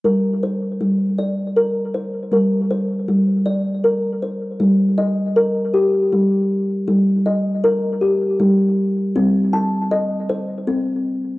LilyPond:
<<
  \new Staff \with { instrumentName = "Kalimba" } { \time 6/8 \key g \minor \tempo 4. = 53 << { bes'8 c''4 d''4 c''8 | bes'8 c''4 d''4 c''8~ | c''8 ees''4 g'4. | r8 ees''4 g'4. |
r8 a''4 c''4. | } \\ { r4 g4 bes'4 | r4 g4 bes'4 | g4 bes'4 g4 | g4 bes'4 g4 |
c'4 ees''4 c'4 | } >> }
  \new Staff \with { instrumentName = "Kalimba" } { \clef bass \time 6/8 \key g \minor g2. | g2. | r2. | r2. |
g2. | }
>>